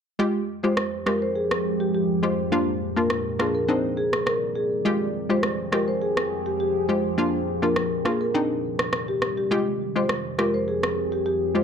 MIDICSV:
0, 0, Header, 1, 5, 480
1, 0, Start_track
1, 0, Tempo, 582524
1, 157, Time_signature, 4, 2, 24, 8
1, 9589, End_track
2, 0, Start_track
2, 0, Title_t, "Marimba"
2, 0, Program_c, 0, 12
2, 521, Note_on_c, 0, 72, 73
2, 596, Note_off_c, 0, 72, 0
2, 875, Note_on_c, 0, 70, 77
2, 959, Note_off_c, 0, 70, 0
2, 1007, Note_on_c, 0, 72, 71
2, 1080, Note_off_c, 0, 72, 0
2, 1117, Note_on_c, 0, 68, 73
2, 1200, Note_off_c, 0, 68, 0
2, 1485, Note_on_c, 0, 67, 72
2, 1558, Note_off_c, 0, 67, 0
2, 1602, Note_on_c, 0, 67, 80
2, 1684, Note_off_c, 0, 67, 0
2, 1839, Note_on_c, 0, 72, 76
2, 1921, Note_off_c, 0, 72, 0
2, 2443, Note_on_c, 0, 70, 75
2, 2517, Note_off_c, 0, 70, 0
2, 2795, Note_on_c, 0, 68, 74
2, 2879, Note_off_c, 0, 68, 0
2, 2922, Note_on_c, 0, 70, 72
2, 2996, Note_off_c, 0, 70, 0
2, 3034, Note_on_c, 0, 72, 80
2, 3118, Note_off_c, 0, 72, 0
2, 3273, Note_on_c, 0, 68, 80
2, 3357, Note_off_c, 0, 68, 0
2, 3513, Note_on_c, 0, 70, 79
2, 3598, Note_off_c, 0, 70, 0
2, 3754, Note_on_c, 0, 68, 77
2, 3838, Note_off_c, 0, 68, 0
2, 4364, Note_on_c, 0, 72, 78
2, 4438, Note_off_c, 0, 72, 0
2, 4715, Note_on_c, 0, 70, 76
2, 4798, Note_off_c, 0, 70, 0
2, 4843, Note_on_c, 0, 72, 71
2, 4917, Note_off_c, 0, 72, 0
2, 4957, Note_on_c, 0, 68, 77
2, 5040, Note_off_c, 0, 68, 0
2, 5324, Note_on_c, 0, 67, 77
2, 5397, Note_off_c, 0, 67, 0
2, 5439, Note_on_c, 0, 67, 79
2, 5521, Note_off_c, 0, 67, 0
2, 5674, Note_on_c, 0, 72, 74
2, 5758, Note_off_c, 0, 72, 0
2, 6284, Note_on_c, 0, 70, 81
2, 6358, Note_off_c, 0, 70, 0
2, 6637, Note_on_c, 0, 68, 74
2, 6720, Note_off_c, 0, 68, 0
2, 6765, Note_on_c, 0, 70, 76
2, 6838, Note_off_c, 0, 70, 0
2, 7485, Note_on_c, 0, 67, 73
2, 7558, Note_off_c, 0, 67, 0
2, 7725, Note_on_c, 0, 67, 69
2, 7799, Note_off_c, 0, 67, 0
2, 8208, Note_on_c, 0, 72, 72
2, 8281, Note_off_c, 0, 72, 0
2, 8558, Note_on_c, 0, 70, 81
2, 8640, Note_off_c, 0, 70, 0
2, 8687, Note_on_c, 0, 72, 67
2, 8760, Note_off_c, 0, 72, 0
2, 8800, Note_on_c, 0, 68, 73
2, 8882, Note_off_c, 0, 68, 0
2, 9164, Note_on_c, 0, 67, 75
2, 9238, Note_off_c, 0, 67, 0
2, 9277, Note_on_c, 0, 67, 82
2, 9360, Note_off_c, 0, 67, 0
2, 9521, Note_on_c, 0, 72, 79
2, 9589, Note_off_c, 0, 72, 0
2, 9589, End_track
3, 0, Start_track
3, 0, Title_t, "Synth pluck"
3, 0, Program_c, 1, 84
3, 156, Note_on_c, 1, 56, 90
3, 158, Note_on_c, 1, 65, 83
3, 161, Note_on_c, 1, 67, 100
3, 323, Note_off_c, 1, 56, 0
3, 324, Note_off_c, 1, 65, 0
3, 325, Note_off_c, 1, 67, 0
3, 524, Note_on_c, 1, 56, 77
3, 525, Note_on_c, 1, 65, 73
3, 529, Note_on_c, 1, 67, 84
3, 681, Note_off_c, 1, 56, 0
3, 682, Note_off_c, 1, 65, 0
3, 683, Note_off_c, 1, 67, 0
3, 876, Note_on_c, 1, 56, 72
3, 878, Note_on_c, 1, 65, 65
3, 881, Note_on_c, 1, 67, 77
3, 1042, Note_off_c, 1, 56, 0
3, 1044, Note_off_c, 1, 65, 0
3, 1045, Note_off_c, 1, 67, 0
3, 1835, Note_on_c, 1, 56, 77
3, 1838, Note_on_c, 1, 65, 74
3, 1840, Note_on_c, 1, 67, 86
3, 2002, Note_off_c, 1, 56, 0
3, 2003, Note_off_c, 1, 65, 0
3, 2005, Note_off_c, 1, 67, 0
3, 2076, Note_on_c, 1, 58, 89
3, 2077, Note_on_c, 1, 62, 82
3, 2080, Note_on_c, 1, 65, 99
3, 2243, Note_off_c, 1, 58, 0
3, 2243, Note_off_c, 1, 62, 0
3, 2244, Note_off_c, 1, 65, 0
3, 2443, Note_on_c, 1, 58, 74
3, 2446, Note_on_c, 1, 62, 72
3, 2448, Note_on_c, 1, 65, 86
3, 2600, Note_off_c, 1, 58, 0
3, 2602, Note_off_c, 1, 62, 0
3, 2603, Note_off_c, 1, 65, 0
3, 2795, Note_on_c, 1, 58, 71
3, 2798, Note_on_c, 1, 62, 68
3, 2800, Note_on_c, 1, 65, 80
3, 2962, Note_off_c, 1, 58, 0
3, 2964, Note_off_c, 1, 62, 0
3, 2965, Note_off_c, 1, 65, 0
3, 3036, Note_on_c, 1, 60, 92
3, 3037, Note_on_c, 1, 62, 84
3, 3039, Note_on_c, 1, 63, 102
3, 3924, Note_off_c, 1, 60, 0
3, 3925, Note_off_c, 1, 62, 0
3, 3926, Note_off_c, 1, 63, 0
3, 3996, Note_on_c, 1, 56, 88
3, 3999, Note_on_c, 1, 65, 87
3, 4001, Note_on_c, 1, 67, 99
3, 4163, Note_off_c, 1, 56, 0
3, 4164, Note_off_c, 1, 65, 0
3, 4165, Note_off_c, 1, 67, 0
3, 4362, Note_on_c, 1, 56, 78
3, 4365, Note_on_c, 1, 65, 70
3, 4368, Note_on_c, 1, 67, 83
3, 4520, Note_off_c, 1, 56, 0
3, 4521, Note_off_c, 1, 65, 0
3, 4523, Note_off_c, 1, 67, 0
3, 4715, Note_on_c, 1, 56, 74
3, 4718, Note_on_c, 1, 65, 65
3, 4720, Note_on_c, 1, 67, 82
3, 4882, Note_off_c, 1, 56, 0
3, 4884, Note_off_c, 1, 65, 0
3, 4885, Note_off_c, 1, 67, 0
3, 5675, Note_on_c, 1, 56, 78
3, 5678, Note_on_c, 1, 65, 71
3, 5680, Note_on_c, 1, 67, 87
3, 5842, Note_off_c, 1, 56, 0
3, 5844, Note_off_c, 1, 65, 0
3, 5845, Note_off_c, 1, 67, 0
3, 5915, Note_on_c, 1, 58, 87
3, 5917, Note_on_c, 1, 62, 80
3, 5920, Note_on_c, 1, 65, 103
3, 6082, Note_off_c, 1, 58, 0
3, 6083, Note_off_c, 1, 62, 0
3, 6085, Note_off_c, 1, 65, 0
3, 6281, Note_on_c, 1, 58, 77
3, 6283, Note_on_c, 1, 62, 73
3, 6286, Note_on_c, 1, 65, 89
3, 6439, Note_off_c, 1, 58, 0
3, 6440, Note_off_c, 1, 62, 0
3, 6442, Note_off_c, 1, 65, 0
3, 6633, Note_on_c, 1, 58, 75
3, 6635, Note_on_c, 1, 62, 70
3, 6638, Note_on_c, 1, 65, 86
3, 6801, Note_off_c, 1, 58, 0
3, 6802, Note_off_c, 1, 62, 0
3, 6804, Note_off_c, 1, 65, 0
3, 6876, Note_on_c, 1, 60, 92
3, 6878, Note_on_c, 1, 62, 85
3, 6880, Note_on_c, 1, 63, 105
3, 7764, Note_off_c, 1, 60, 0
3, 7765, Note_off_c, 1, 62, 0
3, 7766, Note_off_c, 1, 63, 0
3, 7836, Note_on_c, 1, 56, 91
3, 7838, Note_on_c, 1, 65, 82
3, 7841, Note_on_c, 1, 67, 101
3, 8003, Note_off_c, 1, 56, 0
3, 8004, Note_off_c, 1, 65, 0
3, 8005, Note_off_c, 1, 67, 0
3, 8204, Note_on_c, 1, 56, 79
3, 8206, Note_on_c, 1, 65, 72
3, 8209, Note_on_c, 1, 67, 84
3, 8361, Note_off_c, 1, 56, 0
3, 8362, Note_off_c, 1, 65, 0
3, 8363, Note_off_c, 1, 67, 0
3, 8557, Note_on_c, 1, 56, 74
3, 8558, Note_on_c, 1, 65, 69
3, 8561, Note_on_c, 1, 67, 82
3, 8723, Note_off_c, 1, 56, 0
3, 8724, Note_off_c, 1, 65, 0
3, 8725, Note_off_c, 1, 67, 0
3, 9514, Note_on_c, 1, 56, 78
3, 9517, Note_on_c, 1, 65, 71
3, 9519, Note_on_c, 1, 67, 82
3, 9589, Note_off_c, 1, 56, 0
3, 9589, Note_off_c, 1, 65, 0
3, 9589, Note_off_c, 1, 67, 0
3, 9589, End_track
4, 0, Start_track
4, 0, Title_t, "Ambient pad"
4, 0, Program_c, 2, 92
4, 155, Note_on_c, 2, 53, 74
4, 157, Note_on_c, 2, 41, 82
4, 157, Note_on_c, 2, 56, 73
4, 157, Note_on_c, 2, 67, 90
4, 2058, Note_off_c, 2, 41, 0
4, 2058, Note_off_c, 2, 56, 0
4, 2058, Note_off_c, 2, 67, 0
4, 3007, Note_off_c, 2, 53, 0
4, 3995, Note_on_c, 2, 41, 84
4, 3995, Note_on_c, 2, 67, 73
4, 3996, Note_on_c, 2, 53, 73
4, 3997, Note_on_c, 2, 68, 91
4, 5897, Note_off_c, 2, 41, 0
4, 5897, Note_off_c, 2, 67, 0
4, 5898, Note_off_c, 2, 68, 0
4, 6848, Note_off_c, 2, 53, 0
4, 7838, Note_on_c, 2, 67, 75
4, 7839, Note_on_c, 2, 41, 81
4, 7839, Note_on_c, 2, 53, 75
4, 7839, Note_on_c, 2, 68, 89
4, 9589, Note_off_c, 2, 41, 0
4, 9589, Note_off_c, 2, 53, 0
4, 9589, Note_off_c, 2, 67, 0
4, 9589, Note_off_c, 2, 68, 0
4, 9589, End_track
5, 0, Start_track
5, 0, Title_t, "Drums"
5, 635, Note_on_c, 9, 37, 86
5, 718, Note_off_c, 9, 37, 0
5, 878, Note_on_c, 9, 37, 87
5, 960, Note_off_c, 9, 37, 0
5, 1247, Note_on_c, 9, 37, 91
5, 1329, Note_off_c, 9, 37, 0
5, 2555, Note_on_c, 9, 37, 88
5, 2637, Note_off_c, 9, 37, 0
5, 2798, Note_on_c, 9, 37, 91
5, 2881, Note_off_c, 9, 37, 0
5, 3403, Note_on_c, 9, 37, 93
5, 3486, Note_off_c, 9, 37, 0
5, 3516, Note_on_c, 9, 37, 90
5, 3598, Note_off_c, 9, 37, 0
5, 4475, Note_on_c, 9, 37, 90
5, 4557, Note_off_c, 9, 37, 0
5, 4718, Note_on_c, 9, 37, 88
5, 4800, Note_off_c, 9, 37, 0
5, 5085, Note_on_c, 9, 37, 93
5, 5167, Note_off_c, 9, 37, 0
5, 6396, Note_on_c, 9, 37, 90
5, 6478, Note_off_c, 9, 37, 0
5, 6638, Note_on_c, 9, 37, 87
5, 6720, Note_off_c, 9, 37, 0
5, 7245, Note_on_c, 9, 37, 95
5, 7327, Note_off_c, 9, 37, 0
5, 7356, Note_on_c, 9, 37, 83
5, 7439, Note_off_c, 9, 37, 0
5, 7597, Note_on_c, 9, 37, 81
5, 7679, Note_off_c, 9, 37, 0
5, 8316, Note_on_c, 9, 37, 89
5, 8399, Note_off_c, 9, 37, 0
5, 8559, Note_on_c, 9, 37, 90
5, 8642, Note_off_c, 9, 37, 0
5, 8927, Note_on_c, 9, 37, 93
5, 9010, Note_off_c, 9, 37, 0
5, 9589, End_track
0, 0, End_of_file